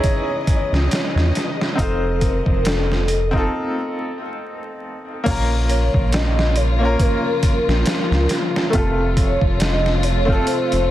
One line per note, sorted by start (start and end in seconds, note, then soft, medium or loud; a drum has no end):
0.00 1.75 C#3 medium
0.00 1.74 E3 medium
0.00 1.75 G#3 medium
0.00 1.80 C#4 medium
0.00 1.77 D#4 medium
0.00 1.80 E4 medium
0.00 1.80 G#4 loud
0.00 1.35 C#5 loud
0.00 3.47 D#5 medium
0.00 3.52 D#5 medium
0.00 kick loud
0.00 closed hi-hat medium
0.47 kick medium
0.47 closed hi-hat medium
0.72 0.89 C#2 medium
0.72 snare soft
0.91 snare loud
0.91 closed hi-hat medium
1.15 1.32 E2 medium
1.15 snare soft
1.35 snare soft
1.35 closed hi-hat medium
1.61 snare soft
1.75 2.42 F1 loud
1.75 3.51 C3 medium
1.75 3.51 F3 medium
1.75 3.26 C4 medium
1.75 3.27 D#4 medium
1.75 kick loud
1.75 closed hi-hat medium
1.80 3.51 C4 medium
1.80 3.28 F4 medium
1.80 2.24 A4 loud
1.80 3.29 C5 loud
2.21 2.68 A#4 loud
2.21 kick medium
2.21 closed hi-hat medium
2.46 3.48 F1 loud
2.46 kick medium
2.65 3.52 A4 loud
2.65 snare loud
2.65 closed hi-hat medium
2.92 snare soft
3.08 closed hi-hat medium
3.31 5.20 C4 medium
3.31 5.21 D#4 medium
3.31 kick medium
3.35 5.22 F4 medium
3.35 5.23 A4 loud
5.24 5.89 A#1 loud
5.24 8.71 C#3 medium
5.24 10.91 F3 medium
5.24 6.74 A#3 medium
5.24 8.70 A#3 medium
5.24 6.75 C#4 medium
5.24 10.91 F4 medium
5.24 8.70 F4 medium
5.24 kick loud
5.24 closed hi-hat medium
5.24 crash medium
5.28 6.76 F4 medium
5.28 6.77 A#4 loud
5.70 6.15 C#5 medium
5.70 closed hi-hat medium
5.94 6.96 A#1 medium
5.94 kick medium
6.13 6.58 D#5 loud
6.13 snare loud
6.13 closed hi-hat medium
6.39 snare medium
6.56 7.02 C#5 loud
6.56 closed hi-hat medium
6.79 8.68 A#3 medium
6.79 8.69 C#4 medium
6.79 8.70 F4 medium
6.85 8.71 A#4 loud
6.99 8.30 A#4 loud
6.99 kick loud
6.99 closed hi-hat medium
7.43 kick loud
7.43 closed hi-hat medium
7.68 7.84 A#1 medium
7.68 snare soft
7.86 snare loud
7.86 closed hi-hat medium
8.11 8.27 C#2 medium
8.11 snare soft
8.29 snare soft
8.29 closed hi-hat medium
8.56 snare medium
8.70 9.37 F1 loud
8.70 10.91 C3 medium
8.70 10.23 C3 medium
8.70 10.21 A3 medium
8.70 10.91 A3 medium
8.70 10.91 F4 medium
8.70 kick loud
8.70 closed hi-hat medium
8.75 10.23 F4 medium
8.75 10.25 A4 medium
9.17 9.61 C#5 medium
9.17 kick medium
9.17 closed hi-hat medium
9.41 10.44 F1 loud
9.41 kick medium
9.59 10.05 D#5 loud
9.59 snare loud
9.59 closed hi-hat medium
9.86 snare soft
10.03 10.48 C#5 medium
10.03 closed hi-hat medium
10.25 10.91 A3 loud
10.25 10.91 C4 medium
10.25 kick loud
10.30 10.91 F4 medium
10.30 10.91 A4 loud
10.46 10.91 C5 loud
10.46 closed hi-hat medium
10.72 10.89 F1 medium
10.72 closed hi-hat soft